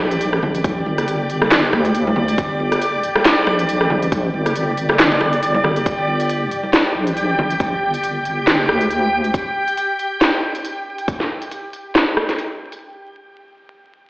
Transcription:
Already playing: synth texture G4 D5
0.00 wobble bass A#1
0.11 closed hi-hat
0.21 closed hi-hat
0.33 cross-stick
0.43 high conga, low conga
0.55 closed hi-hat
0.64 kick, closed hi-hat
0.86 wobble bass G1, high conga
0.98 cross-stick, closed hi-hat
1.08 closed hi-hat
1.30 closed hi-hat
1.41 cross-stick, muted conga, high conga
1.51 snare, clap, closed hi-hat
1.63 muted conga
1.73 wobble bass D2, cross-stick, muted conga
1.85 closed hi-hat
1.95 closed hi-hat
2.07 high conga
2.16 muted conga, high conga, low conga
2.28 closed hi-hat
2.38 wobble bass G1, kick, closed hi-hat
2.60 high conga
2.72 cross-stick, closed hi-hat
2.82 closed hi-hat
3.03 closed hi-hat
3.15 cross-stick, muted conga, high conga
3.25 snare, clap, closed hi-hat
3.47 wobble bass A#1, cross-stick, muted conga
3.59 closed hi-hat
3.69 closed hi-hat
3.81 cross-stick
3.90 high conga, low conga
4.03 closed hi-hat
4.12 kick, closed hi-hat
4.34 wobble bass G1, high conga
4.46 cross-stick, closed hi-hat
4.56 closed hi-hat
4.77 closed hi-hat
4.89 cross-stick, muted conga, high conga
4.99 snare, clap, closed hi-hat
5.12 muted conga
5.21 cross-stick, muted conga
5.33 closed hi-hat
5.43 closed hi-hat
5.54 high conga
5.64 wobble bass G1, cross-stick, high conga, low conga
5.76 closed hi-hat
5.86 wobble bass G1, synth texture G4 G5, kick, closed hi-hat
6.08 high conga
6.20 closed hi-hat
6.30 closed hi-hat
6.51 closed hi-hat
6.63 high conga
6.73 snare, closed hi-hat
6.95 wobble bass A#1
7.07 closed hi-hat
7.17 closed hi-hat
7.38 high conga, low conga
7.50 closed hi-hat
7.60 kick, closed hi-hat
7.82 wobble bass G1
7.94 closed hi-hat
8.04 closed hi-hat
8.25 closed hi-hat
8.47 snare, closed hi-hat
8.69 wobble bass D2, cross-stick
8.81 closed hi-hat
8.91 closed hi-hat
9.24 closed hi-hat
9.34 kick, closed hi-hat
9.68 closed hi-hat
9.78 closed hi-hat
9.99 closed hi-hat
10.21 snare, closed hi-hat
10.55 closed hi-hat
10.65 closed hi-hat
10.98 closed hi-hat
11.08 kick, closed hi-hat
11.20 snare
11.42 closed hi-hat
11.52 closed hi-hat
11.73 closed hi-hat
11.95 snare, closed hi-hat
12.17 cross-stick
12.29 snare, closed hi-hat
12.39 closed hi-hat
12.72 closed hi-hat

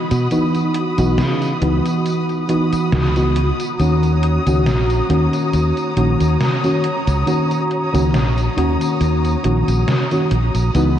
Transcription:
Already playing: string section F#4 B5 D#6
0.11 fingered electric bass B2, closed hi-hat, tambourine
0.31 fm electric piano E3 B3 D#4 F#4, closed hi-hat, tambourine
0.55 closed hi-hat, tambourine
0.75 closed hi-hat
0.98 fingered electric bass B1, fm electric piano E3 B3 D#4 F#4, closed hi-hat, tambourine
1.18 fingered electric bass C#3, snare, closed hi-hat, tambourine
1.42 closed hi-hat, tambourine
1.61 fingered electric bass C#2, fm electric piano E3 B3 D#4 F#4, closed hi-hat
1.86 closed hi-hat, tambourine
2.06 closed hi-hat, tambourine
2.29 closed hi-hat, tambourine
2.48 fm electric piano E3 B3 D#4 F#4, closed hi-hat
2.73 muted fingered electric bass stroke, closed hi-hat, tambourine
2.92 fingered electric bass C#2, snare, closed hi-hat, tambourine
3.16 fm electric piano E3 B3 D#4 F#4, closed hi-hat, tambourine
3.36 closed hi-hat
3.60 closed hi-hat, tambourine
3.79 fingered electric bass D#2, fm electric piano D#3 A#3 C#4 F#4, string section C#5 A#5, closed hi-hat, tambourine
4.03 closed hi-hat, tambourine
4.23 closed hi-hat
4.46 fingered electric bass C#2, fm electric piano D#3 A#3 C#4 F#4, closed hi-hat, tambourine
4.66 fingered electric bass A#1, snare, closed hi-hat, tambourine
4.90 closed hi-hat, tambourine
5.09 fingered electric bass D#2, fm electric piano D#3 A#3 C#4 F#4, closed hi-hat
5.33 closed hi-hat, tambourine
5.53 fingered electric bass D#2, closed hi-hat, tambourine
5.77 closed hi-hat, tambourine
5.96 fingered electric bass A#1, fm electric piano D#3 A#3 C#4 F#4, closed hi-hat
6.20 fingered electric bass D#2, closed hi-hat, tambourine
6.40 snare, closed hi-hat, tambourine
6.63 fm electric piano D#3 A#3 C#4 F#4, closed hi-hat, tambourine
6.84 closed hi-hat
7.07 fingered electric bass C#2, closed hi-hat, tambourine
7.26 fm electric piano D#3 A#3 C#4 F#4, closed hi-hat, tambourine
7.51 closed hi-hat, tambourine
7.71 closed hi-hat
7.93 fingered electric bass C#2, fm electric piano D#3 A#3 C#4 F#4, closed hi-hat, tambourine
8.14 fingered electric bass A#1, snare, closed hi-hat, tambourine
8.38 closed hi-hat, tambourine
8.57 fingered electric bass D#2, fm electric piano D#3 A#3 C#4 F#4, closed hi-hat
8.81 closed hi-hat, tambourine
9.01 fingered electric bass D#2, closed hi-hat, tambourine
9.25 closed hi-hat, tambourine
9.43 fingered electric bass A#1, fm electric piano D#3 A#3 C#4 F#4, closed hi-hat
9.68 fingered electric bass A#1, closed hi-hat, tambourine
9.88 snare, closed hi-hat, tambourine
10.11 fm electric piano D#3 A#3 C#4 F#4, closed hi-hat, tambourine
10.31 fingered electric bass A#1, closed hi-hat
10.55 fingered electric bass A#1, closed hi-hat, tambourine
10.74 fingered electric bass C#2, fm electric piano E3 B3 D#4 F#4, string section F#4 B5, closed hi-hat, tambourine

